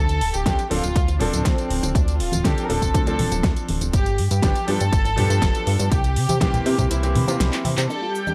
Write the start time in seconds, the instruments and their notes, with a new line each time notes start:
Already playing: analog synth bass D2, violin section A4
0.09 closed hi-hat, tambourine
0.21 analog synth bass D1, open hi-hat
0.34 analog synth bass D1, violin section G4, closed hi-hat, tambourine
0.46 analog synth bass D2, grand piano F3 C4 D4 A4, kick, snare, closed hi-hat, tambourine
0.59 closed hi-hat, tambourine
0.70 analog synth bass D1, grand piano F3 C4 D4 A4, violin section F4, open hi-hat
0.83 analog synth bass D1, closed hi-hat, tambourine
0.96 analog synth bass D2, kick, closed hi-hat, tambourine
1.08 closed hi-hat, tambourine, high bongo
1.19 analog synth bass D1, grand piano F3 C4 D4 A4, violin section D4, open hi-hat, low conga
1.33 analog synth bass D1, closed hi-hat, tambourine
1.45 analog synth bass D2, violin section C4, kick, snare, closed hi-hat, tambourine
1.58 closed hi-hat, tambourine
1.70 analog synth bass D1, open hi-hat
1.83 analog synth bass D1, closed hi-hat, tambourine, high bongo
1.95 analog synth bass D2, violin section D4, kick, closed hi-hat, tambourine
2.08 closed hi-hat, tambourine
2.20 analog synth bass D1, violin section F4, open hi-hat
2.32 analog synth bass D1, closed hi-hat, tambourine, high conga
2.44 analog synth bass D2, grand piano F3 C4 D4 A4, violin section G4, kick, snare, closed hi-hat, tambourine
2.58 closed hi-hat, tambourine
2.63 violin section A#4
2.69 analog synth bass D1, grand piano F3 C4 D4 A4, violin section A4, open hi-hat
2.82 analog synth bass D1, kick, closed hi-hat, tambourine
2.94 analog synth bass D2, kick, closed hi-hat, tambourine
3.06 grand piano F3 C4 D4 A4, closed hi-hat, tambourine
3.19 analog synth bass D1, open hi-hat, high bongo, high conga, low conga
3.32 analog synth bass D1, closed hi-hat, tambourine, high bongo
3.43 analog synth bass D2, kick, snare, closed hi-hat, tambourine
3.56 closed hi-hat, tambourine
3.69 analog synth bass D1, open hi-hat, high conga
3.81 analog synth bass D1, closed hi-hat, tambourine
3.93 analog synth bass G1, violin section G4, kick, closed hi-hat, tambourine
4.06 closed hi-hat, tambourine
4.18 analog synth bass G2, open hi-hat
4.31 analog synth bass G2, violin section G4, closed hi-hat, tambourine
4.42 analog synth bass G1, grand piano F3 B3 D4 G4, kick, snare, closed hi-hat, tambourine
4.55 closed hi-hat, tambourine
4.67 analog synth bass G2, grand piano F3 B3 D4 G4, violin section A4, open hi-hat
4.80 analog synth bass G2, closed hi-hat, tambourine
4.92 analog synth bass G1, kick, closed hi-hat, tambourine
5.05 closed hi-hat, tambourine, high bongo
5.16 analog synth bass G2, grand piano F3 B3 D4 G4, open hi-hat, low conga
5.30 analog synth bass G2, closed hi-hat, tambourine
5.42 analog synth bass G1, kick, snare, closed hi-hat, tambourine
5.55 closed hi-hat, tambourine
5.67 analog synth bass G2, open hi-hat
5.79 analog synth bass G2, closed hi-hat, tambourine, high bongo
5.92 analog synth bass C2, violin section G4, kick, closed hi-hat, tambourine
6.04 closed hi-hat, tambourine
6.16 analog synth bass C3, open hi-hat
6.29 analog synth bass C3, closed hi-hat, tambourine, high bongo, high conga
6.40 analog synth bass C2, grand piano E3 A#3 C4 G4, kick, snare, closed hi-hat, tambourine
6.54 closed hi-hat, tambourine, low conga
6.65 analog synth bass C3, grand piano E3 A#3 C4 G4, open hi-hat
6.78 analog synth bass C3, kick, closed hi-hat, tambourine, low conga
6.91 analog synth bass C2, violin section E4, closed hi-hat, tambourine
7.03 grand piano E3 A#3 C4 G4, closed hi-hat, tambourine
7.15 analog synth bass C3, open hi-hat, high bongo, high conga, low conga
7.27 analog synth bass C3, grand piano E3 A#3 C4 G4, violin section F4, closed hi-hat, tambourine, high bongo
7.38 analog synth bass C2, violin section E4, snare, closed hi-hat, tambourine
7.48 violin section D4
7.53 violin section E4, clap, closed hi-hat, tambourine
7.65 analog synth bass C3, open hi-hat, high conga
7.78 analog synth bass C3, clap, closed hi-hat, tambourine
7.90 clean electric guitar D4, string machine G4 G5, violin section A4, crash, tambourine, cabasa
8.02 clean electric guitar F4, tambourine
8.15 cabasa
8.20 violin section A4
8.27 clean electric guitar D4, violin section G4, tambourine, high conga, cabasa